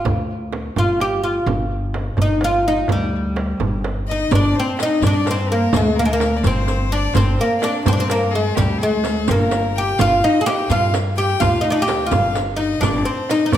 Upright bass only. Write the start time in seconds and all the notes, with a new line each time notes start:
0.05 D2
0.76 G1
1.46 G1
2.18 G1
2.89 D2
3.60 G1
4.31 G1
5.02 G2
5.73 D2
6.43 G1
7.15 G1
7.86 G2
8.58 D2
9.29 G1
10.00 G1
10.70 G2
11.42 D2
12.11 G1
12.81 G1
13.54 G2